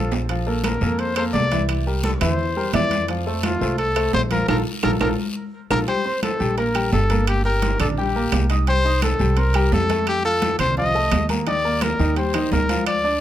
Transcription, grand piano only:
0.00 0.23 F3 medium
0.00 0.23 F4 medium
0.00 0.23 F5 medium
0.29 0.44 F3 medium
0.29 0.44 F4 medium
0.29 0.44 F5 medium
0.47 0.75 A#3 medium
0.47 0.75 A4 medium
0.47 0.75 A#4 medium
0.82 1.10 A#3 medium
0.82 1.10 A4 medium
0.82 1.11 A#4 medium
1.17 1.45 A#3 medium
1.17 1.46 A4 medium
1.17 1.46 A#4 medium
1.51 1.80 E3 medium
1.51 1.80 E4 medium
1.51 1.80 E5 medium
1.86 2.15 G3 medium
1.86 2.15 G4 medium
1.86 2.15 A#4 medium
2.21 2.50 E3 medium
2.21 2.50 E4 medium
2.21 2.50 E5 medium
2.56 2.71 G3 medium
2.56 2.71 G4 medium
2.56 2.71 A#4 medium
2.74 3.02 E3 medium
2.74 3.03 E4 medium
2.74 3.03 E5 medium
3.09 3.23 F3 medium
3.09 3.23 F4 medium
3.09 3.23 F5 medium
3.26 3.55 A3 medium
3.26 3.55 A4 medium
3.26 3.55 C5 medium
3.61 3.89 A3 medium
3.61 3.90 A4 medium
3.61 3.90 C5 medium
3.96 4.25 A3 medium
3.96 4.25 A4 medium
3.96 4.25 C5 medium
4.31 4.45 F3 medium
4.31 4.45 F4 medium
4.31 4.46 F5 medium
4.48 4.60 F4 loud
4.48 4.60 A4 loud
4.48 4.59 A#4 medium
4.83 4.94 F4 medium
4.83 4.95 A4 medium
4.83 4.94 A#4 medium
5.01 5.12 F4 medium
5.01 5.12 A4 medium
5.01 5.12 A#4 medium
5.70 5.82 F4 medium
5.70 5.82 A4 medium
5.70 5.82 A#4 medium
5.88 6.02 G3 medium
5.88 6.02 G4 medium
5.88 6.02 G5 medium
6.05 6.34 C4 medium
6.05 6.34 C5 medium
6.05 6.34 C6 medium
6.40 6.54 G3 medium
6.40 6.55 G4 medium
6.40 6.55 G5 medium
6.58 6.72 A#3 medium
6.58 6.72 A#4 medium
6.58 6.72 A#5 medium
6.75 7.04 G3 medium
6.75 7.04 G4 medium
6.75 7.04 G5 medium
7.10 7.39 A#3 medium
7.10 7.39 A#4 medium
7.10 7.39 A#5 medium
7.45 7.74 G4 medium
7.45 7.74 G5 medium
7.45 7.74 G6 medium
7.80 7.94 D4 medium
7.80 7.94 D5 medium
7.80 7.95 D6 medium
7.97 8.12 G3 medium
7.97 8.12 G4 medium
7.97 8.12 G5 medium
8.16 8.44 A#3 medium
8.16 8.44 A#4 medium
8.16 8.44 A#5 medium
8.50 8.64 D#4 medium
8.50 8.65 D#5 medium
8.50 8.65 D#6 medium
8.68 8.82 G3 medium
8.68 8.82 G4 medium
8.68 8.82 G5 medium
8.85 9.14 D#4 medium
8.85 9.14 D#5 medium
8.85 9.14 D#6 medium
9.20 9.34 G3 medium
9.20 9.34 G4 medium
9.20 9.35 G5 medium
9.37 9.51 C4 medium
9.37 9.52 C5 medium
9.37 9.52 C6 medium
9.55 9.84 G3 medium
9.55 9.84 G4 medium
9.55 9.84 G5 medium
9.90 10.18 A3 medium
9.90 10.19 A4 medium
9.90 10.19 A5 medium
10.25 10.53 F4 medium
10.25 10.53 F5 medium
10.25 10.54 F6 medium
10.60 10.74 C4 medium
10.60 10.74 C5 medium
10.60 10.74 C6 medium
10.77 10.91 F3 medium
10.77 10.92 F4 medium
10.77 10.92 F5 medium
10.95 11.23 A3 medium
10.95 11.23 A4 medium
10.95 11.24 A5 medium
11.29 11.44 A#3 medium
11.29 11.44 A#4 medium
11.29 11.44 A#5 medium
11.47 11.61 D#3 medium
11.47 11.61 D#4 medium
11.47 11.62 D#5 medium
11.65 11.93 A#3 medium
11.65 11.93 A#4 medium
11.65 11.93 A#5 medium
11.99 12.14 D#3 medium
11.99 12.14 D#4 medium
11.99 12.14 D#5 medium
12.16 12.31 G3 medium
12.16 12.31 G4 medium
12.16 12.31 G5 medium
12.34 12.63 D#3 medium
12.34 12.63 D#4 medium
12.34 12.63 D#5 medium
12.69 12.98 F3 medium
12.69 12.98 F4 medium
12.69 12.98 F5 medium
13.04 13.21 D4 medium
13.04 13.21 D5 medium
13.04 13.21 D6 medium

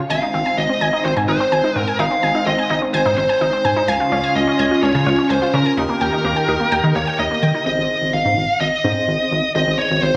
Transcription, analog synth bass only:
0.10 0.20 G#1 loud
0.34 0.43 G#1 loud
0.58 0.67 G#1 loud
0.81 0.91 G#1 loud
1.05 1.14 G#1 loud
1.17 1.26 G#2 loud
1.28 1.38 G#1 loud
1.52 1.62 G#1 loud
1.76 1.85 G#2 loud
1.99 2.09 G#1 loud
2.23 2.32 G#1 loud
2.47 2.56 G#1 loud
2.70 2.80 G#1 medium
2.94 3.03 G#1 loud
3.06 3.15 G#2 loud
3.18 3.27 G#1 loud
3.41 3.51 G#1 loud
3.65 3.74 G#2 loud
3.88 3.98 C#2 loud
4.12 4.21 C#2 medium
4.36 4.45 C#2 loud
4.59 4.69 C#2 loud
4.83 4.92 C#2 loud
4.95 5.04 C#3 loud
5.06 5.16 C#2 loud
5.30 5.40 C#2 loud
5.54 5.63 C#3 loud
5.77 5.87 D#2 loud
6.01 6.10 D#2 medium
6.25 6.34 D#2 loud
6.48 6.58 D#2 medium
6.72 6.81 D#2 loud
6.84 6.93 D#3 loud
6.95 7.05 D#2 loud
7.19 7.28 D#2 loud
7.43 7.52 D#3 loud
7.66 7.76 G#1 loud
7.78 7.88 G#1 loud
8.02 8.11 G#1 loud
8.13 8.23 G#1 loud
8.25 8.35 G#2 loud
8.37 8.47 G#1 loud
8.61 8.70 G#1 loud
8.84 8.94 G#2 loud
9.08 9.17 G#1 loud
9.32 9.41 G#1 loud
9.55 9.65 G#1 loud
9.67 9.77 G#1 medium
9.91 10.00 G#1 loud
10.03 10.12 G#1 loud

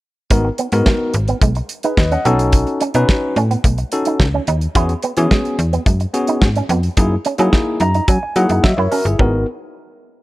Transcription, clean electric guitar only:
0.31 0.39 G#3 medium
0.45 muted clean electric guitar stroke soft
0.59 0.67 B3 medium
0.87 0.95 G#3 medium
1.15 muted clean electric guitar stroke soft
1.28 1.36 B3 medium
1.43 1.50 G#3 medium
1.57 muted clean electric guitar stroke soft
1.84 1.92 D#4 medium
1.98 muted clean electric guitar stroke soft
2.12 2.19 C#4 medium
2.25 2.33 B3 medium
2.67 muted clean electric guitar stroke soft
2.81 2.89 C#4 medium
2.95 3.03 D#4 medium
3.09 muted clean electric guitar stroke soft
3.37 3.45 C#4 medium
3.51 3.59 B3 medium
3.65 3.72 A3 medium
3.78 muted clean electric guitar stroke soft
4.07 4.14 D#4 medium
4.21 muted clean electric guitar stroke soft
4.34 4.42 C#4 medium
4.48 4.56 D#4 medium
4.75 4.83 E4 medium
4.89 muted clean electric guitar stroke soft
5.03 5.11 B3 medium
5.31 5.39 G#3 medium
5.59 muted clean electric guitar stroke soft
5.73 5.81 B3 medium
5.87 5.95 G#3 medium
6.01 muted clean electric guitar stroke soft
6.28 6.36 D#4 medium
6.42 muted clean electric guitar stroke soft
6.56 6.64 C#4 medium
6.70 6.78 B3 medium
7.12 muted clean electric guitar stroke soft
7.26 7.33 C#4 medium
7.40 7.48 C#4 medium
7.54 muted clean electric guitar stroke soft
7.81 7.89 D#4 medium
7.95 8.03 D#4 medium
8.09 8.17 C#4 medium
8.23 muted clean electric guitar stroke soft
8.51 8.58 D#4 medium
8.64 muted clean electric guitar stroke soft
8.78 8.86 E4 medium
8.92 9.00 C#4 medium
9.20 9.37 B3 medium

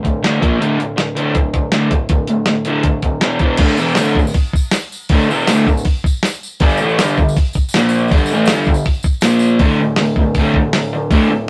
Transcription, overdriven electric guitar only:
0.03 0.21 D2 medium
0.03 0.21 A2 medium
0.23 0.39 D2 medium
0.23 0.41 A2 medium
0.23 0.41 D3 medium
0.40 0.58 A#2 medium
0.40 0.59 F3 medium
0.40 0.60 A#3 loud
0.58 0.77 D2 medium
0.58 0.77 A2 loud
0.58 0.79 D3 loud
0.78 0.95 D2 medium
0.78 0.96 A2 medium
0.96 1.14 D2 medium
0.96 1.15 A2 medium
1.15 1.34 D2 medium
1.15 1.35 A2 loud
1.15 1.35 D3 loud
1.35 1.52 D2 medium
1.35 1.53 A2 medium
1.53 1.71 D2 medium
1.53 1.71 A2 medium
1.72 1.89 D2 medium
1.72 1.90 A2 medium
1.72 1.91 D3 loud
1.91 2.09 D2 medium
1.91 2.09 A2 medium
2.10 2.28 D2 medium
2.10 2.28 A2 medium
2.29 2.47 D2 medium
2.29 2.47 A2 medium
2.48 2.64 D2 medium
2.48 2.65 A2 medium
2.65 2.82 D2 medium
2.65 2.83 A2 medium
2.65 2.85 D3 medium
2.83 3.02 D2 medium
2.83 3.02 A2 medium
3.04 3.21 D2 medium
3.04 3.21 A2 medium
3.21 3.39 E2 medium
3.21 3.40 B2 loud
3.21 3.40 E3 loud
3.40 3.58 E2 medium
3.40 3.59 B2 loud
3.40 3.59 E3 medium
3.58 3.78 D2 loud
3.58 3.79 A2 loud
3.58 3.79 D3 loud
3.78 3.97 E2 medium
3.78 3.98 B2 loud
3.78 3.98 E3 medium
3.98 4.17 D2 medium
3.98 4.16 A2 medium
3.98 4.18 D3 medium
4.18 4.33 D2 medium
4.18 4.33 A2 medium
5.10 5.29 D2 medium
5.10 5.30 A2 loud
5.10 5.30 D3 loud
5.29 5.48 E2 loud
5.29 5.49 B2 loud
5.29 5.48 E3 loud
5.50 5.66 D2 medium
5.50 5.66 A2 loud
5.50 5.68 D3 medium
5.67 5.82 D2 medium
5.67 5.82 A2 medium
6.61 6.79 G2 loud
6.61 6.79 D3 loud
6.61 6.80 G3 loud
6.81 6.98 A2 loud
6.81 6.99 E3 loud
6.81 7.00 A3 loud
7.00 7.17 G2 medium
7.00 7.17 D3 medium
7.00 7.18 G3 medium
7.18 7.33 G2 medium
7.18 7.33 D3 medium
7.75 8.11 A#2 loud
7.75 8.12 F3 loud
7.75 8.12 A#3 loud
8.12 8.30 G2 loud
8.12 8.31 D3 loud
8.12 8.31 G3 loud
8.32 8.49 A2 loud
8.32 8.49 E3 loud
8.32 8.50 A3 loud
8.49 8.67 G2 medium
8.49 8.68 D3 medium
8.49 8.68 G3 medium
8.70 8.83 G2 medium
8.70 8.83 D3 medium
9.23 9.60 A#2 loud
9.23 9.60 F3 medium
9.23 9.61 A#3 loud
9.60 9.78 D2 medium
9.60 9.79 A2 medium
9.60 9.79 D3 loud
9.80 9.97 D2 medium
9.80 9.97 A2 medium
9.99 10.16 D2 medium
9.99 10.16 A2 medium
10.19 10.35 D2 medium
10.19 10.35 A2 medium
10.38 10.55 D2 medium
10.38 10.55 A2 loud
10.38 10.56 D3 loud
10.57 10.73 D2 medium
10.57 10.73 A2 medium
10.74 10.91 D2 medium
10.74 10.91 A2 loud
10.93 11.09 D2 medium
10.93 11.10 A2 medium
11.11 11.29 D2 medium
11.11 11.29 A2 medium
11.11 11.30 D3 loud
11.30 11.47 D2 medium
11.30 11.47 A2 medium

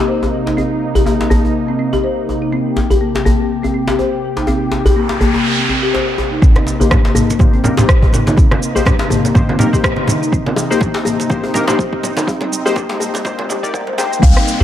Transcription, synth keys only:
6.80 6.92 A#3 medium
6.80 6.92 D#4 medium
6.80 6.92 G4 medium
6.80 6.92 C5 medium
7.40 7.62 A#3 medium
7.40 7.62 D#4 medium
7.40 7.62 G4 medium
7.40 7.62 C5 medium
7.64 7.75 A#3 medium
7.64 7.75 D#4 medium
7.64 7.75 G4 medium
7.64 7.75 A#4 medium
7.78 7.90 A#3 medium
7.78 7.89 D#4 medium
7.78 7.89 G4 medium
7.78 7.89 C5 medium
8.76 8.87 A#3 medium
8.76 8.87 D#4 medium
8.76 8.87 G4 medium
8.76 8.87 C5 medium
9.35 9.57 A#3 medium
9.35 9.57 D#4 medium
9.35 9.57 G4 medium
9.35 9.57 C5 medium
9.59 9.70 A#3 medium
9.59 9.70 D#4 medium
9.59 9.70 G4 medium
9.59 9.70 A#4 medium
9.73 9.85 A#3 medium
9.73 9.85 D#4 medium
9.73 9.85 G4 medium
9.73 9.85 C5 medium
10.71 10.82 A#3 medium
10.71 10.82 D#4 medium
10.71 10.82 G4 medium
10.71 10.82 C5 medium
11.30 11.52 A#3 medium
11.30 11.52 D#4 medium
11.30 11.52 G4 medium
11.30 11.52 C5 medium
11.54 11.65 A#3 medium
11.54 11.65 D#4 medium
11.54 11.65 G4 medium
11.54 11.65 A#4 medium
11.68 11.80 A#3 medium
11.68 11.80 D#4 medium
11.68 11.80 G4 medium
11.68 11.80 C5 medium
12.66 12.77 A#3 medium
12.66 12.77 D#4 medium
12.66 12.77 G4 medium
12.66 12.77 C5 loud
13.25 13.47 A#3 medium
13.25 13.47 D#4 medium
13.25 13.47 G4 medium
13.25 13.47 C5 medium
13.63 13.84 A#3 medium
13.63 13.84 D#4 medium
13.63 13.84 G4 medium
13.63 13.84 D5 loud
13.98 14.20 A#3 medium
13.98 14.20 D#4 medium
13.98 14.20 G4 medium
13.98 14.20 C5 medium
14.61 14.64 A#3 medium
14.61 14.64 D#4 medium
14.61 14.64 G4 medium
14.61 14.64 C5 medium

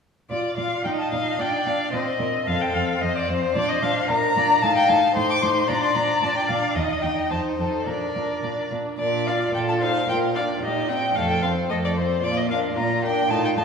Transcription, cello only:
0.29 0.38 A#2 soft
0.57 0.65 A#2 soft
0.84 0.92 A#2 soft
1.12 1.20 A#2 soft
1.39 1.47 A#2 soft
1.66 1.74 A#2 soft
1.92 2.00 A#2 soft
2.19 2.27 A#2 soft
2.47 2.55 F2 soft
2.74 2.82 F2 soft
3.01 3.09 F2 soft
3.28 3.36 F2 soft
3.55 3.63 A#2 soft
3.83 3.91 A#2 soft
4.09 4.17 A#2 soft
4.36 4.44 A#2 soft
4.62 4.70 A2 soft
4.89 4.97 A2 soft
5.16 5.24 A2 soft
5.42 5.50 A2 soft
5.69 5.77 A#2 soft
5.95 6.03 A#2 soft
6.22 6.30 A#2 soft
6.49 6.57 A#2 soft
6.76 6.84 D#2 soft
7.03 7.11 D#2 soft
7.30 7.38 F2 soft
7.58 7.66 F2 soft
7.86 7.94 A#2 soft
8.15 8.23 A#2 soft
8.43 8.51 A#2 soft
8.71 8.79 A#2 soft
8.99 9.48 A#2 soft
9.54 10.02 A#2 soft
10.09 10.56 A#2 soft
10.63 11.10 A#2 soft
11.16 11.64 F2 soft
11.70 12.17 F2 soft
12.23 12.70 A#2 soft
12.77 13.24 A#2 soft
13.29 13.37 A2 soft
13.56 13.64 A2 soft

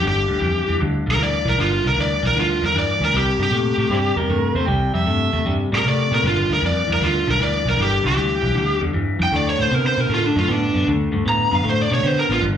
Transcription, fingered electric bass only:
0.04 0.24 G1 medium
0.30 0.39 D2 medium
0.42 0.62 F2 medium
0.69 0.78 E2 medium
0.82 1.01 D2 medium
1.07 1.16 B1 medium
1.19 1.39 D2 medium
1.45 1.55 B1 loud
1.58 1.78 G1 medium
1.85 1.94 C2 medium
1.97 2.17 D2 medium
2.23 2.33 B1 medium
2.36 2.56 D2 medium
2.62 2.72 E2 medium
2.74 2.94 G2 medium
3.00 3.10 D2 loud
3.13 3.33 C2 medium
3.38 3.48 G2 medium
3.51 3.71 A#2 medium
3.77 3.87 A2 medium
3.90 4.10 G2 medium
4.16 4.26 E2 medium
4.28 4.49 G2 medium
4.55 4.65 E2 loud
4.68 4.88 C2 medium
4.94 5.04 F2 medium
5.07 5.27 G2 medium
5.33 5.43 E2 medium
5.46 5.66 G2 medium
5.72 5.82 A2 medium
5.85 6.05 C3 medium
6.11 6.25 A#2 loud
6.23 6.43 G1 loud
6.49 6.59 D2 medium
6.62 6.82 F2 medium
6.89 6.98 E2 medium
7.01 7.21 D2 medium
7.27 7.37 B1 medium
7.40 7.59 D2 medium
7.65 7.75 B1 medium
7.78 7.98 G1 loud
8.05 8.14 C2 medium
8.17 8.37 D2 medium
8.43 8.52 B1 medium
8.55 8.75 D2 medium
8.82 8.91 E2 medium
8.94 9.14 G2 medium
9.20 9.29 F2 medium
9.32 9.52 D2 medium
9.59 9.68 A2 medium
9.71 9.91 C3 medium
9.97 10.07 B2 medium
10.09 10.30 A2 medium
10.36 10.45 F#2 medium
10.48 10.68 A2 medium
10.74 10.84 F#2 medium
10.88 11.08 D2 medium
11.14 11.24 G2 medium
11.26 11.46 A2 medium
11.52 11.62 F#2 medium
11.65 11.85 A2 medium
11.91 12.01 B2 medium
12.03 12.23 D3 medium
12.29 12.39 A1 medium
12.41 12.57 G1 loud

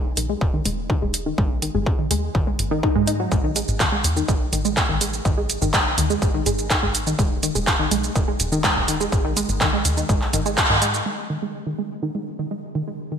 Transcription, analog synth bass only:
0.00 0.13 E1 medium
0.17 0.36 B1 medium
0.41 0.60 E1 medium
0.66 0.98 E1 medium
1.02 1.34 E1 medium
1.38 1.70 G#1 medium
1.75 2.06 G#1 medium
2.11 2.29 D#2 medium
2.35 2.54 G#1 medium
2.59 2.91 G#1 medium
2.96 3.27 G#2 medium
3.32 3.64 A1 medium
3.68 4.00 A1 medium
4.04 4.23 E2 medium
4.28 4.47 A1 medium
4.53 4.85 A1 medium
4.89 5.21 A1 medium
5.25 5.57 G#1 medium
5.62 5.93 G#1 medium
5.98 6.17 D#2 medium
6.22 6.41 G#1 medium
6.46 6.78 G#1 medium
6.83 7.14 G#1 medium
7.19 7.51 E1 medium
7.55 7.87 E1 medium
7.91 8.10 B1 medium
8.16 8.34 E1 medium
8.40 8.72 E1 medium
8.76 9.08 E1 medium
9.12 9.44 G#1 loud
9.49 9.81 G#1 medium
9.85 10.04 D#2 medium
10.09 10.28 G#1 medium
10.33 10.65 G#1 medium
10.70 11.02 G#2 medium

